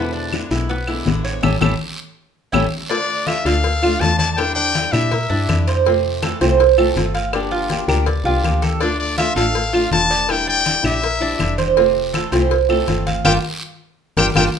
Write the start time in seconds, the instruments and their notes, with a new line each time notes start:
Already playing: fm bass E2, nylon-string guitar B2 D3 G#3, cuban tres B3
0.00 nylon-string guitar B3 E4
0.13 cuban tres D4, high conga
0.33 nylon-string guitar D3 G#3 B3 E4, high bongo, high conga, short guiro, claves
0.51 fm bass B1, nylon-string guitar D3 G#3 B3 E4, cuban tres E4, high bongo, high conga, short guiro
0.69 cuban tres B3, muted nylon-string guitar stroke, high bongo, high conga, long guiro
0.87 nylon-string guitar D3 G#3 B3 E4, cuban tres E4, high bongo, high conga, claves
1.06 fm bass A1, nylon-string guitar D3 G#3 B3 E4, high bongo, low bongo, high conga, short guiro
1.24 cuban tres C#5, high bongo, short guiro
1.43 fm bass A1, nylon-string guitar G3 A3 C#4, cuban tres E4 G4 A4, low bongo, high conga, long guiro, claves
1.61 fm bass A1, nylon-string guitar G3 A3 C#4, cuban tres E4 G4 A4, low bongo, high conga, long guiro, claves
2.52 fm bass A1, nylon-string guitar G3 A3 C#4, cuban tres E4 G4 A4, low bongo, high conga, long guiro, claves
2.90 nylon-string guitar D3 A3 D4 F4, cuban tres D4, trumpet D5, cowbell, high conga, long guiro
3.09 high conga
3.27 nylon-string guitar D3 A3 D4 F4, cuban tres F4, trumpet E5, cowbell, high conga, short guiro, claves
3.45 fm bass D2, nylon-string guitar A3 D4 F4, cuban tres A4, trumpet F5, cowbell, short guiro
3.64 muted nylon-string guitar stroke, cowbell, high conga, long guiro
3.83 nylon-string guitar A3 D4 F4, cuban tres F4, high conga, claves
4.00 fm bass E2, nylon-string guitar D3 A3 D4 F4, trumpet A5, cowbell, high conga, short guiro
4.18 cuban tres D5, trumpet A5, cowbell, high conga, short guiro
4.33 trumpet G5 A5
4.37 nylon-string guitar D3 G3 D4 E4, cuban tres A#4, cowbell, long guiro, claves
4.55 cuban tres D4, trumpet G5, high conga
4.75 nylon-string guitar D3 G3 D4 E4, cowbell, high conga, short guiro
4.92 fm bass A#2, nylon-string guitar G3 D4 E4, cuban tres G4, trumpet E5, high conga, low conga, short guiro, claves
5.11 cuban tres A#4, muted nylon-string guitar stroke, cowbell, high conga, low conga, long guiro
5.30 fm bass G2, nylon-string guitar G3 D4 E4, cuban tres D4, high conga
5.49 fm bass F2, nylon-string guitar D3 G3 D4 E4, cowbell, high conga, short guiro, claves
5.67 cuban tres C5, cowbell, short guiro
5.85 nylon-string guitar C3 A3 C4 F4, cowbell, high conga, long guiro
6.05 high conga
6.22 nylon-string guitar E3 A3 C4 F4, cuban tres A4, cowbell, high conga, short guiro, claves
6.41 fm bass C2, nylon-string guitar E3 A3 C4 F4, cuban tres C5, cowbell, high conga, short guiro
6.60 muted nylon-string guitar stroke, cowbell, high conga, long guiro
6.78 nylon-string guitar E3 A3 C4 F4, cuban tres A4, high conga, claves
6.96 fm bass G1, nylon-string guitar A3 C4 F4, cowbell, high conga, short guiro
7.14 cuban tres F5, cowbell, short guiro
7.33 nylon-string guitar D3 F3 A#3 D4 G4, cuban tres D5, cowbell, high conga, long guiro, claves
7.51 cuban tres F4, high conga
7.70 nylon-string guitar F3 A#3 D4 G4, cowbell, high conga, short guiro
7.88 fm bass D2, nylon-string guitar F3 A#3 D4 G4, cuban tres A#4, high conga, low conga, short guiro, claves
8.06 cuban tres D5, muted nylon-string guitar stroke, cowbell, high conga, low conga, long guiro
8.24 fm bass C2, nylon-string guitar F3 A#3 D4 G4, cuban tres F4, high conga
8.43 fm bass D2, nylon-string guitar F3 A#3 D4 G4, cowbell, high conga, short guiro, claves
8.62 cuban tres A4, cowbell, high conga, short guiro
8.81 nylon-string guitar D3 A3 D4 F4, cuban tres D4, trumpet D5, cowbell, high conga, long guiro
8.99 trumpet D5, high conga
9.18 nylon-string guitar D3 A3 D4 F4, cuban tres F4, trumpet E5, cowbell, high conga, short guiro, claves
9.36 fm bass A1, nylon-string guitar A3 D4 F4, cuban tres A4, trumpet F5, cowbell, high conga, short guiro
9.55 muted nylon-string guitar stroke, cowbell, high conga, long guiro
9.73 nylon-string guitar A3 D4 F4, cuban tres F4, high conga, claves
9.91 fm bass E1, nylon-string guitar D3 A3 D4 F4, trumpet A5, cowbell, high conga, short guiro
10.11 cuban tres D5, cowbell, short guiro
10.29 nylon-string guitar D3 G3 D4 E4, cuban tres A#4, trumpet G5, cowbell, high conga, long guiro, claves
10.47 cuban tres D4, trumpet G5, high conga
10.65 nylon-string guitar D3 G3 D4 E4, cowbell, high conga, short guiro
10.83 fm bass A#1, nylon-string guitar G3 D4 E4, cuban tres G4, trumpet E5, high conga, low conga, short guiro, claves
11.02 cuban tres A#4, muted nylon-string guitar stroke, cowbell, high conga, long guiro
11.20 nylon-string guitar G3 D4 E4, cuban tres D4, high conga
11.38 fm bass F1, nylon-string guitar D3 G3 D4 E4, cowbell, high conga, short guiro, claves
11.58 cuban tres C5, cowbell, high conga, short guiro
11.76 nylon-string guitar C3 A3 C4 F4, cowbell, high conga, long guiro
11.95 high conga
12.13 nylon-string guitar E3 A3 C4 F4, cuban tres A4, cowbell, high conga, short guiro, claves
12.32 fm bass C2, nylon-string guitar E3 A3 C4 F4, cuban tres C5, cowbell, high conga, short guiro
12.51 muted nylon-string guitar stroke, cowbell, high conga, long guiro
12.69 nylon-string guitar E3 A3 C4 F4, cuban tres A4, high conga, claves
12.88 fm bass G1, nylon-string guitar A3 C4 F4, cowbell, high conga, short guiro
13.07 cuban tres F5, cowbell, high conga, short guiro
13.24 fm bass G1, nylon-string guitar G3 A#3 D4, cuban tres F4 G4 A#4, trumpet G5, cowbell, high conga, long guiro, claves
14.17 fm bass G1, nylon-string guitar G3 A#3 D4, cuban tres F4 G4 A#4, trumpet G5, cowbell, high conga, long guiro, claves
14.35 fm bass G1, nylon-string guitar G3 A#3 D4, cuban tres F4 G4 A#4, trumpet G5, cowbell, high conga, long guiro, claves